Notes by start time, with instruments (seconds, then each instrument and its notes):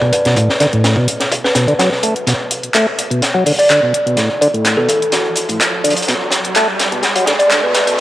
Already playing: kalimba D5
0.01 tonewheel organ B2, kalimba B4, kick
0.12 kalimba B4, closed hi-hat
0.25 tonewheel organ B2, kalimba B4, snare, closed hi-hat
0.36 tonewheel organ A2, kick, closed hi-hat
0.50 snare
0.60 tonewheel organ D3, snare, closed hi-hat
0.73 tonewheel organ A2, closed hi-hat
0.84 snare, closed hi-hat
0.96 tonewheel organ B2, kick
1.08 closed hi-hat
1.20 snare, closed hi-hat
1.32 kick, closed hi-hat
1.44 kalimba B4, snare
1.55 tonewheel organ B2, kalimba B4, snare, closed hi-hat
1.68 tonewheel organ D3, closed hi-hat
1.79 tonewheel organ F#3, snare, closed hi-hat
1.92 snare
2.03 tonewheel organ A3, closed hi-hat
2.16 closed hi-hat
2.27 tonewheel organ B2, snare, closed hi-hat, riser
2.51 closed hi-hat
2.63 closed hi-hat
2.74 tonewheel organ A3, snare, clap, closed hi-hat
2.99 closed hi-hat
3.11 tonewheel organ B2, closed hi-hat
3.22 snare, closed hi-hat
3.34 tonewheel organ F#3
3.46 tonewheel organ D3, closed hi-hat, open hi-hat
3.59 kalimba D5, closed hi-hat
3.70 tonewheel organ D3, snare, clap, closed hi-hat
3.82 tonewheel organ B2
3.94 closed hi-hat
4.06 tonewheel organ B2, closed hi-hat
4.17 tonewheel organ A2, snare, closed hi-hat
4.41 tonewheel organ D3, closed hi-hat
4.54 tonewheel organ A2, closed hi-hat
4.65 snare, clap, closed hi-hat
4.77 tonewheel organ B2, kalimba A4
4.89 kalimba A4, closed hi-hat
5.02 closed hi-hat
5.12 kalimba F#4, snare, closed hi-hat
5.36 closed hi-hat
5.49 tonewheel organ A2, closed hi-hat
5.60 snare, clap, closed hi-hat
5.84 tonewheel organ D3, closed hi-hat
5.90 closed hi-hat
5.96 closed hi-hat
6.02 closed hi-hat
6.08 tonewheel organ B2, snare, closed hi-hat
6.31 snare, closed hi-hat
6.45 closed hi-hat
6.55 tonewheel organ A3, snare, clap, closed hi-hat
6.79 snare, closed hi-hat
6.92 tonewheel organ B2, closed hi-hat
7.03 snare, closed hi-hat
7.16 tonewheel organ F#3, closed hi-hat
7.26 tonewheel organ D3, snare, closed hi-hat
7.39 kalimba D5, closed hi-hat
7.51 tonewheel organ D3, snare, clap, closed hi-hat
7.63 tonewheel organ B2, kalimba B4
7.75 kalimba B4, snare, closed hi-hat
7.87 tonewheel organ B2, kalimba B4, closed hi-hat